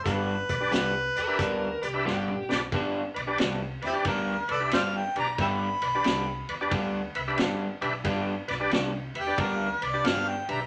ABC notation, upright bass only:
X:1
M:4/4
L:1/8
Q:"Swing" 1/4=90
K:G
V:1 name="Upright bass" clef=bass
G,,, B,,, C,, E,, D,, C,, G,,, B,,, | G,,, B,,, C,, E,, D,, C,, G,,, B,,, | G,,, B,,, C,, E,, D,, C,, G,,, B,,, | G,,, B,,, C,, E,, D,, C,, G,,, B,,, |]